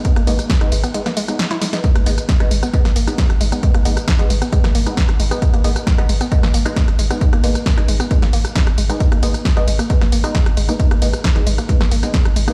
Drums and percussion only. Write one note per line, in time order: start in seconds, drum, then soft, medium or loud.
0.05 kick loud
0.05 closed hi-hat medium
0.05 tambourine soft
0.16 cross-stick medium
0.16 closed hi-hat medium
0.27 open hi-hat loud
0.27 ride medium
0.27 tambourine medium
0.39 cross-stick medium
0.39 closed hi-hat medium
0.39 tambourine soft
0.50 kick loud
0.50 snare loud
0.50 closed hi-hat medium
0.50 tambourine soft
0.61 cross-stick medium
0.61 closed hi-hat soft
0.72 open hi-hat loud
0.72 ride medium
0.72 tambourine medium
0.84 cross-stick medium
0.84 closed hi-hat medium
0.84 tambourine soft
0.94 closed hi-hat medium
0.94 tambourine soft
1.06 cross-stick medium
1.06 snare medium
1.06 closed hi-hat medium
1.17 open hi-hat loud
1.17 ride medium
1.17 tambourine medium
1.28 cross-stick medium
1.28 closed hi-hat medium
1.28 tambourine soft
1.39 snare loud
1.39 closed hi-hat medium
1.39 tambourine soft
1.51 snare medium
1.51 closed hi-hat medium
1.61 snare medium
1.61 open hi-hat loud
1.61 ride medium
1.61 tambourine medium
1.73 snare medium
1.73 closed hi-hat medium
1.73 tambourine soft
1.84 kick loud
1.84 closed hi-hat medium
1.84 tambourine soft
1.96 cross-stick loud
1.96 closed hi-hat medium
2.06 open hi-hat loud
2.06 ride medium
2.06 tambourine medium
2.18 cross-stick medium
2.18 closed hi-hat medium
2.18 tambourine soft
2.29 kick loud
2.29 snare loud
2.29 closed hi-hat medium
2.29 tambourine soft
2.40 cross-stick medium
2.40 closed hi-hat medium
2.51 open hi-hat loud
2.51 ride medium
2.51 tambourine medium
2.63 cross-stick medium
2.63 closed hi-hat medium
2.63 tambourine soft
2.74 kick loud
2.74 closed hi-hat medium
2.74 tambourine soft
2.85 cross-stick medium
2.85 snare medium
2.85 closed hi-hat medium
2.96 open hi-hat loud
2.96 ride medium
2.96 tambourine medium
3.07 cross-stick medium
3.07 closed hi-hat medium
3.07 tambourine soft
3.18 kick loud
3.18 snare loud
3.18 closed hi-hat medium
3.18 tambourine soft
3.30 cross-stick medium
3.30 closed hi-hat medium
3.41 open hi-hat loud
3.41 ride medium
3.41 tambourine medium
3.52 cross-stick medium
3.52 closed hi-hat medium
3.52 tambourine soft
3.63 kick loud
3.63 closed hi-hat medium
3.63 tambourine soft
3.74 cross-stick medium
3.74 closed hi-hat medium
3.85 open hi-hat loud
3.85 ride medium
3.85 tambourine medium
3.97 cross-stick medium
3.97 closed hi-hat medium
3.97 tambourine soft
4.08 kick loud
4.08 snare loud
4.08 closed hi-hat medium
4.08 tambourine soft
4.19 cross-stick medium
4.19 closed hi-hat medium
4.30 open hi-hat loud
4.30 ride medium
4.30 tambourine medium
4.42 cross-stick medium
4.42 closed hi-hat medium
4.42 tambourine soft
4.53 kick loud
4.53 closed hi-hat medium
4.53 tambourine soft
4.64 cross-stick medium
4.64 snare medium
4.64 closed hi-hat medium
4.75 open hi-hat loud
4.75 ride medium
4.75 tambourine medium
4.87 cross-stick medium
4.87 closed hi-hat medium
4.87 tambourine soft
4.97 kick loud
4.97 snare loud
4.97 closed hi-hat medium
4.97 tambourine soft
5.09 cross-stick medium
5.09 closed hi-hat medium
5.20 open hi-hat loud
5.20 ride medium
5.20 tambourine medium
5.31 cross-stick medium
5.31 closed hi-hat medium
5.31 tambourine soft
5.42 kick loud
5.42 closed hi-hat medium
5.42 tambourine soft
5.54 cross-stick medium
5.54 closed hi-hat medium
5.64 open hi-hat loud
5.64 ride medium
5.64 tambourine medium
5.76 cross-stick medium
5.76 closed hi-hat medium
5.76 tambourine soft
5.87 kick loud
5.87 snare loud
5.87 closed hi-hat medium
5.87 tambourine soft
5.98 cross-stick medium
5.98 closed hi-hat medium
6.09 open hi-hat loud
6.09 ride medium
6.09 tambourine medium
6.21 cross-stick medium
6.21 closed hi-hat medium
6.21 tambourine soft
6.32 kick loud
6.32 closed hi-hat medium
6.32 tambourine soft
6.43 cross-stick medium
6.43 snare medium
6.43 closed hi-hat medium
6.54 open hi-hat loud
6.54 ride medium
6.54 tambourine medium
6.66 cross-stick loud
6.66 closed hi-hat medium
6.66 tambourine soft
6.76 kick loud
6.76 snare loud
6.76 closed hi-hat medium
6.76 tambourine soft
6.88 cross-stick medium
6.88 closed hi-hat medium
6.99 open hi-hat loud
6.99 ride medium
6.99 tambourine medium
7.11 cross-stick loud
7.11 closed hi-hat medium
7.11 tambourine soft
7.21 kick loud
7.21 closed hi-hat medium
7.21 tambourine soft
7.33 cross-stick loud
7.33 closed hi-hat medium
7.44 open hi-hat loud
7.44 ride medium
7.44 tambourine medium
7.55 cross-stick medium
7.55 closed hi-hat medium
7.55 tambourine soft
7.66 kick loud
7.66 snare loud
7.66 closed hi-hat medium
7.66 tambourine soft
7.78 cross-stick medium
7.78 closed hi-hat soft
7.88 open hi-hat loud
7.88 ride medium
7.88 tambourine medium
8.00 cross-stick loud
8.00 closed hi-hat medium
8.00 tambourine soft
8.11 kick loud
8.11 closed hi-hat medium
8.11 tambourine soft
8.22 cross-stick medium
8.22 snare medium
8.22 closed hi-hat medium
8.33 open hi-hat loud
8.33 ride medium
8.33 tambourine medium
8.45 cross-stick medium
8.45 closed hi-hat medium
8.45 tambourine soft
8.56 kick loud
8.56 snare loud
8.56 closed hi-hat medium
8.56 tambourine soft
8.67 cross-stick loud
8.67 closed hi-hat medium
8.78 open hi-hat loud
8.78 ride medium
8.78 tambourine medium
8.90 cross-stick medium
8.90 closed hi-hat medium
8.90 tambourine soft
9.00 kick loud
9.00 closed hi-hat medium
9.00 tambourine soft
9.12 cross-stick loud
9.12 closed hi-hat medium
9.23 open hi-hat loud
9.23 ride medium
9.23 tambourine medium
9.34 cross-stick medium
9.34 closed hi-hat medium
9.34 tambourine soft
9.45 kick loud
9.45 snare loud
9.45 closed hi-hat medium
9.45 tambourine soft
9.57 cross-stick medium
9.57 closed hi-hat soft
9.68 open hi-hat loud
9.68 ride medium
9.68 tambourine medium
9.79 cross-stick loud
9.79 closed hi-hat soft
9.79 tambourine soft
9.90 kick loud
9.90 closed hi-hat medium
9.90 tambourine soft
10.02 cross-stick medium
10.02 snare medium
10.02 closed hi-hat soft
10.12 open hi-hat loud
10.12 ride medium
10.12 tambourine medium
10.24 cross-stick loud
10.24 closed hi-hat soft
10.24 tambourine soft
10.35 kick loud
10.35 snare loud
10.35 closed hi-hat medium
10.35 tambourine soft
10.46 cross-stick loud
10.46 closed hi-hat medium
10.57 open hi-hat loud
10.57 ride medium
10.57 tambourine medium
10.69 cross-stick medium
10.69 closed hi-hat medium
10.69 tambourine soft
10.80 kick loud
10.80 closed hi-hat medium
10.80 tambourine soft
10.91 cross-stick loud
10.91 closed hi-hat medium
11.02 open hi-hat loud
11.02 ride medium
11.02 tambourine medium
11.13 cross-stick medium
11.13 closed hi-hat medium
11.13 tambourine soft
11.24 kick loud
11.24 snare loud
11.24 closed hi-hat medium
11.24 tambourine soft
11.36 cross-stick medium
11.36 closed hi-hat soft
11.47 open hi-hat loud
11.47 ride medium
11.47 tambourine medium
11.58 cross-stick medium
11.58 closed hi-hat medium
11.58 tambourine soft
11.69 kick loud
11.69 closed hi-hat medium
11.69 tambourine soft
11.81 cross-stick medium
11.81 snare medium
11.81 closed hi-hat soft
11.91 open hi-hat loud
11.91 ride medium
11.91 tambourine medium
12.03 cross-stick medium
12.03 closed hi-hat soft
12.03 tambourine soft
12.14 kick loud
12.14 snare loud
12.14 closed hi-hat medium
12.14 tambourine soft
12.25 cross-stick medium
12.25 closed hi-hat medium
12.36 open hi-hat loud
12.36 ride medium
12.36 tambourine medium
12.48 cross-stick loud
12.48 closed hi-hat soft
12.48 tambourine soft